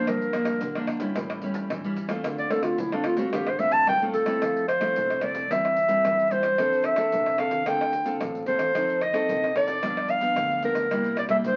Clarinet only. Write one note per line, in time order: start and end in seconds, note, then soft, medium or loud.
0.00 0.10 C5 medium
0.09 0.90 A#4 medium
2.39 2.53 D5 medium
2.51 2.65 A4 medium
2.63 2.81 F4 medium
2.79 2.95 E4 medium
2.93 3.07 D4 medium
3.06 3.20 F4 medium
3.18 3.35 F#4 medium
3.34 3.50 G4 medium
3.49 3.61 C5 medium
3.60 3.74 E5 loud
3.73 3.87 A5 loud
3.88 4.04 G5 loud
4.14 4.65 A4 medium
4.68 5.24 C5 medium
5.23 5.53 D5 medium
5.51 6.33 E5 loud
6.32 6.87 C5 medium
6.85 7.41 E5 medium
7.39 7.69 F5 loud
7.68 8.21 G5 loud
8.47 9.04 C5 medium
9.02 9.56 D#5 loud
9.57 10.12 D5 loud
10.10 10.64 F5 loud
10.65 11.14 A#4 medium
11.18 11.24 D5 medium
11.30 11.36 E5 medium
11.47 11.56 C5 medium